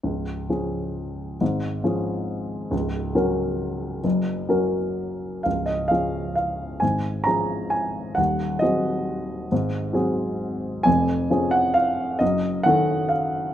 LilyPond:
<<
  \new Staff \with { instrumentName = "Grand piano" } { \time 3/4 \key des \major \tempo 4 = 133 r2. | r2. | r2. | r2. |
f''8 ees''8 f''4 f''4 | aes''4 bes''4 aes''4 | ges''4 ees''2~ | ees''2. |
aes''4. ges''8 f''4 | ees''4 ges''4 f''4 | }
  \new Staff \with { instrumentName = "Grand piano" } { \clef bass \time 3/4 \key des \major <des,, des,>4 <f des' aes'>2 | <aes,, aes,>4 <f des' aes'>2 | <des,, des,>4 <ges des' bes'>2 | <ges,, ges,>4 <ges des' bes'>2 |
<des,, des,>4 <f des' aes'>2 | <aes,, aes,>4 <f des' aes'>2 | <ees,, ees,>4 <ges c' aes'>2 | <aes,, aes,>4 <ges c' aes'>2 |
<f,, f,>4 <f des' aes'>2 | <ges,, ges,>4 <ees des' a'>2 | }
>>